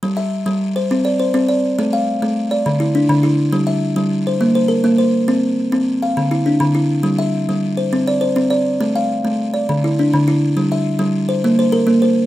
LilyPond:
<<
  \new Staff \with { instrumentName = "Kalimba" } { \time 12/8 \key c \mixolydian \tempo 4. = 137 r8 e''4. r8 c''4 d''8 c''4 d''4~ | d''8 f''4. r8 d''4 e'8 d'4 e'4~ | e'8 e''4. r8 c''4 c''8 bes'4 c''4~ | c''8 r2 f''4 e'8 d'4 e'4~ |
e'8 e''4. r8 c''4 d''8 c''4 d''4~ | d''8 f''4. r8 d''4 e'8 d'4 e'4~ | e'8 e''4. r8 c''4 c''8 bes'4 c''4 | }
  \new Staff \with { instrumentName = "Kalimba" } { \clef bass \time 12/8 \key c \mixolydian g4 r8 g4 r8 c'4 r8 c'4 r8 | a4 r8 a4 r8 d4 r8 d4 r8 | g4 r8 g4 r8 bes4 r8 bes4 r8 | c'4 r8 c'4 r8 d4 r8 d4 r8 |
g4 r8 g4 r8 c'4 r8 c'4 r8 | a4 r8 a4 r8 d4 r8 d4 r8 | g4 r8 g4 r8 bes4 r8 bes4 r8 | }
>>